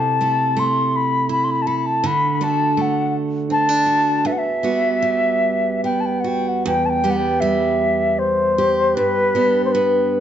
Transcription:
Already playing: C3 E4 A4 A5
0.21 A3 E4 A4
0.56 A3 C6
0.96 B5
1.29 E4 B5
1.44 C6
1.51 B5
1.62 A5
1.67 A4 B5
1.78 B5
1.86 A5
2.04 D3 B5
2.35 B5
2.41 A3 D4 F#4 A5
2.77 A3
2.81 F#5
3.50 C4 A5
3.69 D4
3.86 F#4
4.25 E2 E5
4.32 F#5
4.38 E5
4.63 G3 B3 F#4
5.02 G3
5.84 B3 G5
6.00 A5
6.06 G5
6.20 F#5
6.24 F#4 G5
6.48 F#5
6.66 E2 G5
6.86 G5 A5
7.04 G3 B3 G4
7.10 F#5
7.17 G5
7.40 G3 E5
8.19 C5
8.58 G4
8.95 G2 B4
9.35 B3 D4 G4
9.65 C5
9.72 B3 B4

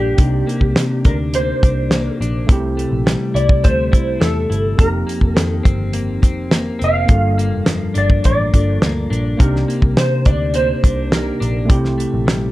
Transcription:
Already playing: A#1 G2 F3 A#3 D4 F4 G4 A#4 A5
0.17 C2 C3 A#3 D4 D#4, kick, closed hi-hat
0.21 G4
0.47 A#3, closed hi-hat
0.61 C2, kick
0.76 C3, snare, closed hi-hat
1.05 D2 D4 A#4, kick, closed hi-hat
1.34 A#3 C5, closed hi-hat
1.63 C2 D4, kick, closed hi-hat
1.91 A#3, snare, closed hi-hat
2.20 A#1 D4, closed hi-hat
2.47 C2 C3 A3 C4 E4, kick, closed hi-hat
2.52 G4
2.77 A3, closed hi-hat
2.91 A#1
3.06 G3, snare, closed hi-hat
3.34 C2 E4 D5, closed hi-hat
3.49 kick
3.64 D2 A3 C5, kick, closed hi-hat
3.92 C2 E4, kick, closed hi-hat
4.20 E2 A3 A4, snare, closed hi-hat
4.50 G1 E4, closed hi-hat
4.78 F1 F2 A#3 C4 D#4 A#4, kick, closed hi-hat
4.83 G4
5.07 A#3, closed hi-hat
5.21 F1, kick
5.34 F2 D#3 A4, snare, closed hi-hat
5.64 G1 C4, kick, closed hi-hat
5.93 A#3, closed hi-hat
6.22 F1 C4, kick, closed hi-hat
6.51 A#3, snare, closed hi-hat
6.79 F1 C4, closed hi-hat
6.84 F5
7.06 G1 G2 A#3 D4 F4, kick, closed hi-hat
7.11 A4
7.38 A#3, closed hi-hat
7.54 F1
7.66 F3, snare, closed hi-hat
7.94 G1 D4 D5, closed hi-hat
8.10 kick
8.24 A1 A#3 D5, kick, closed hi-hat
8.53 G1 A#3 D4 F4 A4, kick, closed hi-hat
8.82 D2 A#3, snare, closed hi-hat
9.10 A#1 D4, closed hi-hat
9.37 C2 C3 A#3 D4 D#4 A#4, kick, closed hi-hat
9.42 G4
9.56 snare
9.68 A#3, closed hi-hat
9.82 C2, kick
9.97 C3 C5, snare, closed hi-hat
10.25 D2 D4 D5, kick, closed hi-hat
10.54 A#3 C5, closed hi-hat
10.84 C2 D4, kick, closed hi-hat
11.11 A#3 D4 D#4 G4 A#4, snare, closed hi-hat
11.40 A#1 D4, closed hi-hat
11.65 A3 C4 E4
11.69 C2 C3 G4, kick, closed hi-hat
11.85 snare
11.98 A3, closed hi-hat
12.14 A#1
12.27 G3, snare, closed hi-hat

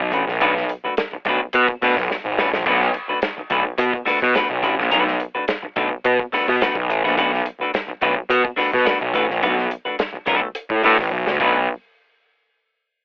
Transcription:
0.00 B1
0.12 A1 A3 D4 F#4 B4, kick, closed hi-hat
0.27 A#1, muted clean electric guitar stroke, snare
0.40 B1 A3 D4 F#4 B4, closed hi-hat
0.55 muted clean electric guitar stroke, snare
0.69 muted clean electric guitar stroke, closed hi-hat
0.84 A3 D4 F#4 B4, muted picked electric bass stroke
0.97 muted clean electric guitar stroke, snare, closed hi-hat
1.13 muted picked electric bass stroke, muted clean electric guitar stroke
1.25 B1 A3 D4 F#4, kick, closed hi-hat
1.29 B4
1.43 muted clean electric guitar stroke
1.53 B2, closed hi-hat
1.68 muted clean electric guitar stroke, kick
1.82 B2 A3 D4 F#4 B4, snare, open hi-hat
1.97 B1, muted clean electric guitar stroke, kick, snare
2.11 muted clean electric guitar stroke, snare
2.25 G#1
2.38 A1 A3 D4 F#4 B4, snare
2.53 A#1, muted clean electric guitar stroke, snare
2.66 B1 A3 D4 F#4 B4, kick, crash
2.81 snare
2.94 muted clean electric guitar stroke, closed hi-hat
3.09 A3 D4 F#4 B4, muted picked electric bass stroke
3.22 muted clean electric guitar stroke, snare, closed hi-hat
3.37 muted clean electric guitar stroke, muted picked electric bass stroke
3.50 B1 A3 D4 F#4 B4, kick, closed hi-hat
3.65 muted clean electric guitar stroke
3.78 B2, closed hi-hat
3.93 muted clean electric guitar stroke, kick
4.05 A3 D4 F#4 B4, muted picked electric bass stroke, snare, open hi-hat
4.20 B2, muted clean electric guitar stroke, kick, snare
4.34 A3 D4 F#4 B4, snare, closed hi-hat
4.49 B1, muted clean electric guitar stroke
4.62 A1 A3 D4 F#4 B4, kick, closed hi-hat
4.79 A#1, snare
4.90 B1 A3 D4 F#4 B4, closed hi-hat
5.06 muted clean electric guitar stroke, snare
5.19 muted clean electric guitar stroke, closed hi-hat
5.35 A3 D4 F#4 B4, muted picked electric bass stroke
5.47 muted clean electric guitar stroke, snare, closed hi-hat
5.62 muted clean electric guitar stroke, muted picked electric bass stroke
5.76 B1 A3 D4 F#4 B4, kick, closed hi-hat
5.90 muted clean electric guitar stroke
6.05 B2, closed hi-hat
6.19 muted clean electric guitar stroke, kick
6.33 A3 D4 F#4 B4, muted picked electric bass stroke, snare, open hi-hat
6.48 B2, muted clean electric guitar stroke, kick, snare
6.61 A3 D4 F#4 B4, snare, closed hi-hat
6.75 B1, kick
6.89 A1, muted clean electric guitar stroke, closed hi-hat
7.04 A#1 A3 D4 F#4 B4, snare
7.17 B1 A3 D4 F#4 B4, kick, closed hi-hat
7.34 snare
7.46 muted clean electric guitar stroke, closed hi-hat
7.60 A3 D4 F#4 B4, muted picked electric bass stroke
7.73 muted clean electric guitar stroke, snare, closed hi-hat
7.88 muted picked electric bass stroke, muted clean electric guitar stroke
8.01 B1 A3 D4 F#4 B4, kick, closed hi-hat
8.16 muted clean electric guitar stroke
8.30 B2, closed hi-hat
8.45 muted clean electric guitar stroke, kick
8.56 A3 D4 F#4 B4, muted picked electric bass stroke, snare, open hi-hat
8.72 B2, muted clean electric guitar stroke, kick, snare
8.85 A3 D4 F#4 B4, snare, closed hi-hat
9.00 B1, muted clean electric guitar stroke
9.14 A1 A3 D4 F#4 B4, kick, closed hi-hat
9.30 A#1, snare
9.42 B1 A3 D4 F#4 B4, closed hi-hat
9.59 snare
9.71 muted clean electric guitar stroke, closed hi-hat
9.85 A3 D4 F#4 B4, muted picked electric bass stroke
9.98 muted clean electric guitar stroke, snare, closed hi-hat
10.13 muted clean electric guitar stroke, muted picked electric bass stroke
10.26 B1 A3 D4 F#4 B4, kick, closed hi-hat
10.42 muted clean electric guitar stroke
10.55 closed hi-hat
10.70 A2, muted clean electric guitar stroke, kick
10.83 A2 A3 D4 F#4 B4, snare, open hi-hat
10.99 A1, kick, snare
11.11 B1, muted clean electric guitar stroke
11.26 D2, snare
11.40 B1 A3 D4 F#4 B4, kick, crash

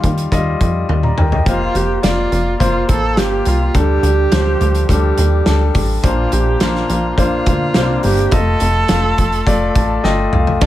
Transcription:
Already playing: D#3 G3 F4 D#5 F5
0.04 D#2, kick, closed hi-hat
0.18 closed hi-hat
0.32 D#2 G3 F4 D#5, kick, closed hi-hat
0.61 F2, kick, closed hi-hat
0.89 D#2, high tom
1.03 D5 A#5, mid tom
1.18 D#2 A#4 G5, mid tom
1.32 G4 D#5, floor tom
1.46 F1 A#3 F4 C5, kick, closed hi-hat
1.75 F1 G4, closed hi-hat
2.03 F1 A#3 F4 D5, snare, closed hi-hat
2.32 F1, closed hi-hat
2.60 F1 A#3 F4 C5, kick, closed hi-hat
2.89 A1 A4, kick, closed hi-hat
3.17 G1 A#3 F4 G4, snare, closed hi-hat
3.45 C2 F4, closed hi-hat
3.74 D2 D3 G3 D4 G4 A4, kick, closed hi-hat
4.03 D2, closed hi-hat
4.32 D2 F3 D4 C5, snare, closed hi-hat
4.38 G3
4.61 D2, closed hi-hat
4.75 closed hi-hat
4.89 D2 G3 D4 G4 A4, kick, closed hi-hat
5.18 D#2, closed hi-hat
5.46 D2 G3 D4 A4, snare, closed hi-hat
5.75 A1, kick, open hi-hat
6.03 A#1 A#2 A#3 D4 F4 C5, kick, closed hi-hat
6.32 A#1 G4, closed hi-hat
6.60 A#1 A#3 D4 F4 C5, snare, closed hi-hat
6.75 snare
6.90 A#1, closed hi-hat
7.17 A#1 A#3 D4 F4 C5, kick, closed hi-hat
7.46 D2, kick, closed hi-hat
7.74 C2 A#3 C4 C5, snare, closed hi-hat
7.81 D4
8.03 G1 G4, open hi-hat
8.17 closed hi-hat
8.31 F1 A3 F4 A4 D#5, kick, closed hi-hat
8.60 F1, closed hi-hat
8.88 F1 A3 F4 F5, snare, closed hi-hat
9.18 F1, kick, closed hi-hat
9.33 closed hi-hat
9.46 F1 A3 F4 D5, kick, closed hi-hat
9.75 A1 A5, kick, closed hi-hat
10.04 G1 A3 F4 D#5 G5, snare
10.32 C2 F5, mid tom
10.47 floor tom
10.61 D2 D3 F3 A3 D4 F4 D5, kick, crash

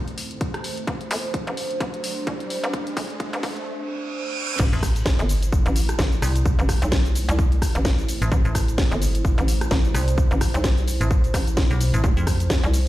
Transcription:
Already playing: A3 E4 C5, riser
0.08 closed hi-hat
0.18 open hi-hat
0.31 closed hi-hat
0.41 kick, closed hi-hat
0.54 cross-stick, closed hi-hat
0.64 open hi-hat
0.77 closed hi-hat
0.87 A1 D4, kick, closed hi-hat
1.01 closed hi-hat
1.11 G1, open hi-hat
1.34 kick, closed hi-hat
1.47 A1, closed hi-hat
1.57 open hi-hat
1.71 closed hi-hat
1.80 A1, kick, closed hi-hat
1.94 closed hi-hat
2.04 open hi-hat
2.27 C2, kick, closed hi-hat
2.40 closed hi-hat
2.50 open hi-hat
2.64 A1, closed hi-hat
2.73 kick, closed hi-hat
2.87 closed hi-hat
2.97 G1, kick, open hi-hat
3.10 closed hi-hat
3.20 kick, closed hi-hat
3.33 A1, closed hi-hat
3.43 A1, kick, open hi-hat
3.57 closed hi-hat
3.66 reverse cymbal
4.59 A1 A3 E4 C5, kick, crash, sub drop, shaker
4.73 A1, closed hi-hat, shaker
4.83 kick, cross-stick, open hi-hat, shaker
4.96 closed hi-hat, shaker
5.06 kick, snare, shaker
5.19 G1, closed hi-hat, shaker
5.29 open hi-hat, shaker
5.42 closed hi-hat, shaker
5.53 kick, shaker
5.66 A1, closed hi-hat, shaker
5.76 open hi-hat, shaker
5.89 cross-stick, closed hi-hat, shaker
5.99 A1, kick, snare, shaker
6.12 closed hi-hat, shaker
6.22 C2, cross-stick, open hi-hat, shaker
6.36 closed hi-hat, shaker
6.46 kick, shaker
6.59 A1, closed hi-hat, shaker
6.69 kick, cross-stick, open hi-hat, shaker
6.82 B1, closed hi-hat, shaker
6.92 kick, snare, shaker
7.05 closed hi-hat, shaker
7.15 open hi-hat, shaker
7.29 C2, closed hi-hat, shaker
7.39 kick, shaker
7.52 closed hi-hat, shaker
7.62 kick, cross-stick, open hi-hat, shaker
7.75 A1, closed hi-hat, shaker
7.85 kick, snare, shaker
7.99 closed hi-hat, shaker
8.09 open hi-hat, shaker
8.22 A1, closed hi-hat, shaker
8.32 A1, kick, shaker
8.45 A1, closed hi-hat, shaker
8.55 kick, cross-stick, open hi-hat, shaker
8.68 closed hi-hat, shaker
8.78 kick, snare, shaker
8.91 G1, closed hi-hat, shaker
9.02 open hi-hat, shaker
9.15 closed hi-hat, shaker
9.25 kick, shaker
9.38 A1, closed hi-hat, shaker
9.48 open hi-hat, shaker
9.61 cross-stick, closed hi-hat, shaker
9.71 A1, kick, snare, shaker
9.85 closed hi-hat, shaker
9.94 C2, cross-stick, open hi-hat, shaker
10.08 closed hi-hat, shaker
10.18 kick, shaker
10.31 A1, closed hi-hat, shaker
10.41 kick, cross-stick, open hi-hat, shaker
10.54 B1, closed hi-hat, shaker
10.64 kick, snare, shaker
10.78 closed hi-hat, shaker
10.88 open hi-hat, shaker
11.01 A1, closed hi-hat, shaker
11.11 kick, shaker
11.24 closed hi-hat, shaker
11.34 A1, kick, cross-stick, open hi-hat, shaker
11.47 closed hi-hat, shaker
11.57 kick, snare, shaker
11.70 B1, closed hi-hat, shaker
11.81 open hi-hat, shaker
11.94 A1, closed hi-hat, shaker
12.04 F1 A3 F4, kick, shaker
12.17 F2, closed hi-hat, shaker
12.27 kick, cross-stick, open hi-hat, shaker
12.40 closed hi-hat, shaker
12.50 kick, snare, shaker
12.64 C2, closed hi-hat, shaker
12.74 open hi-hat, shaker

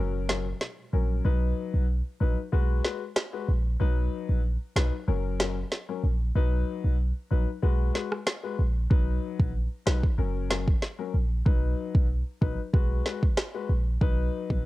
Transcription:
Already playing: F#1 F#3 C#4 A#4
0.29 F#3 C#4 A#4, cross-stick, snare
0.61 snare
0.93 A#1 F#3 C#4 A#4
1.25 B1 F#3 D#4 B4
1.74 B1
2.20 A#1 F#3 D#4 B4
2.52 B1 G#3 F#4 B4
2.84 G#3 F#4 B4, snare
3.16 cross-stick, snare
3.33 G#3 F#4 B4
3.49 A#1
3.80 B1 F#3 D#4 B4
4.29 A#1
4.76 B1 F#3 D#4 B4, cross-stick, snare
5.08 F#1 F#3 C#4 A#4
5.40 F#3 C#4 A#4, cross-stick, snare
5.72 snare
5.89 F#3 C#4 A#4
6.04 A#1
6.35 B1 F#3 D#4 B4
6.84 B1
7.31 A#1 F#3 D#4 B4
7.63 B1 G#3 F#4 B4
7.94 G#3 F#4 B4, snare
8.12 cross-stick
8.27 cross-stick, snare
8.43 G#3 F#4 B4
8.59 A#1
8.90 B1 F#3 D#4 B4, kick
9.39 A#1, kick
9.86 B1 F#3 D#4 B4, cross-stick, snare
10.03 kick
10.18 F#1 F#3 C#4 A#4
10.50 F#3 C#4 A#4, cross-stick, snare
10.68 kick
10.82 snare
10.99 F#3 C#4 A#4
11.14 A#1
11.46 B1 F#3 D#4 B4, kick
11.95 B1, kick
12.41 A#1 F#3 D#4 B4, kick
12.73 B1 G#3 F#4 B4, kick
13.05 G#3 F#4 B4, snare
13.23 kick
13.37 cross-stick, snare
13.54 G#3 F#4 B4
13.69 A#1
14.01 B1 F#3 D#4 B4, kick
14.50 A#1, kick

